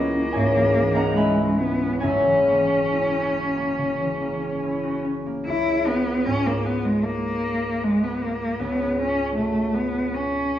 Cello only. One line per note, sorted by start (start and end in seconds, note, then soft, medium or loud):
0.00 1.16 A#3 medium
1.15 1.60 G#3 medium
1.58 2.03 B3 medium
2.03 5.00 C#4 medium
5.46 5.88 E4 medium
5.87 6.28 B3 medium
6.26 6.48 C#4 medium
6.46 6.67 A#3 medium
6.65 6.86 B3 medium
6.85 7.05 G#3 medium
7.04 7.85 A#3 medium
7.83 8.05 G#3 medium
8.04 8.23 B3 medium
8.22 8.61 A#3 medium
8.59 9.01 B3 medium
9.00 9.35 C#4 medium
9.36 9.76 A3 medium
9.74 10.16 B3 medium
10.14 10.59 C#4 medium